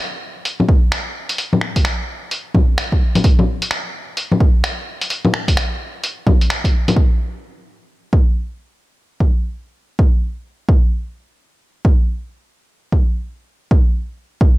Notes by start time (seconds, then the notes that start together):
0.45 closed hi-hat
0.60 low bongo
0.69 kick
0.92 finger snap, closed hi-hat
1.29 closed hi-hat
1.38 closed hi-hat
1.53 low bongo
1.61 finger snap
1.76 kick, closed hi-hat
1.85 finger snap, closed hi-hat
2.31 closed hi-hat
2.54 kick, low bongo
2.78 finger snap, closed hi-hat
2.92 kick
3.15 closed hi-hat, low bongo
3.24 kick, closed hi-hat
3.39 low bongo
3.62 closed hi-hat
3.71 finger snap, closed hi-hat
4.17 closed hi-hat
4.32 low bongo
4.40 kick
4.64 finger snap, closed hi-hat
5.01 closed hi-hat
5.10 closed hi-hat
5.25 low bongo
5.34 finger snap
5.48 kick, closed hi-hat
5.57 finger snap, closed hi-hat
6.04 closed hi-hat
6.27 kick, low bongo
6.41 closed hi-hat
6.50 finger snap, closed hi-hat
6.64 kick, closed hi-hat
6.88 closed hi-hat, low bongo
6.96 kick
8.13 kick
9.20 kick
9.99 kick
10.69 kick
11.85 kick
12.92 kick
13.71 kick
14.41 kick